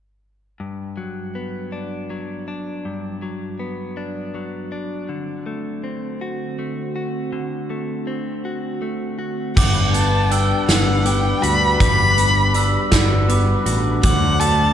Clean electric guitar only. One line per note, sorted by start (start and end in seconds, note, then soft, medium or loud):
0.60 2.47 G2 soft
0.97 2.10 F#3 soft
1.35 3.22 B3 soft
1.72 2.47 D4 soft
2.10 3.22 F#3 soft
2.48 3.97 D4 soft
2.85 4.72 G2 soft
3.22 4.34 F#3 soft
3.59 5.09 B3 soft
3.97 4.71 D4 soft
4.35 5.46 F#3 soft
4.72 5.87 D4 soft
5.09 6.96 D3 soft
5.46 6.58 A3 soft
5.84 7.71 C4 soft
6.21 6.94 F#4 soft
6.59 7.69 A3 soft
6.96 8.44 F#4 soft
7.32 9.20 D3 soft
7.70 8.80 A3 soft
8.07 9.57 C4 soft
8.45 9.17 F#4 soft
8.82 9.57 A3 soft
9.19 9.57 F#4 soft
9.56 11.43 G3 medium
9.94 11.04 B3 medium
10.31 12.54 D4 medium
11.05 12.16 B3 medium
11.42 12.91 F#4 medium
11.80 13.67 G3 medium
12.17 13.28 B3 medium
12.55 14.73 D4 medium
12.92 13.65 F#4 medium
13.29 14.04 B3 medium
13.66 14.73 F#4 medium
14.03 14.73 D3 medium
14.41 14.73 A3 medium